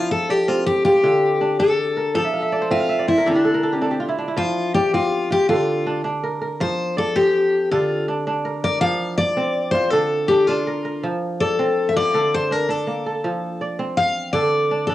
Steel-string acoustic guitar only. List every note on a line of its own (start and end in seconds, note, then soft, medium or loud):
0.00 0.11 F4 medium
0.11 0.30 A4 medium
0.30 0.48 G4 medium
0.48 0.66 F4 medium
0.66 0.84 G4 medium
0.85 1.59 G4 medium
1.60 2.14 A4 medium
2.15 2.71 A4 medium
2.71 3.08 F4 medium
3.08 3.27 E4 medium
3.27 3.79 D4 medium
3.79 3.97 C4 medium
4.37 4.74 F4 loud
4.74 4.94 G4 loud
4.94 5.28 F4 medium
5.32 5.49 G4 loud
5.49 6.01 F4 medium
6.61 6.95 C5 loud
6.98 7.17 A4 medium
7.16 7.71 G4 medium
7.71 8.06 F4 medium
8.64 8.80 D5 loud
8.81 9.16 F5 loud
9.18 9.70 D5 loud
9.71 9.90 C5 loud
9.90 10.30 A4 medium
10.28 10.47 G4 medium
10.47 11.03 F4 medium
11.40 11.90 A4 medium
11.89 11.95 E5 medium
11.96 12.34 D5 loud
12.34 12.52 C5 medium
12.52 12.70 A#4 medium
12.70 13.62 A4 medium
13.97 14.31 F5 loud
14.33 14.85 D5 medium
14.87 14.95 A4 medium